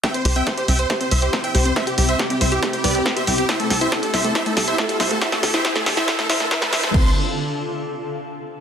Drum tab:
CC |----------------|----------------|----------------|----------------|
HH |xxoxxxoxxxoxxxox|xxoxxxoxxxoxxxox|xxoxxxoxxxoxxxox|xxoxxxoxxxoxxxox|
SD |o---o---o---o---|o---o---o---o---|o-o-o-o-o-o-o-o-|oooooooooooooooo|
BD |o---o---o---o---|o---o---o---o---|o---o---o---o---|o---o---o---o---|

CC |x---------------|
HH |----------------|
SD |----------------|
BD |o---------------|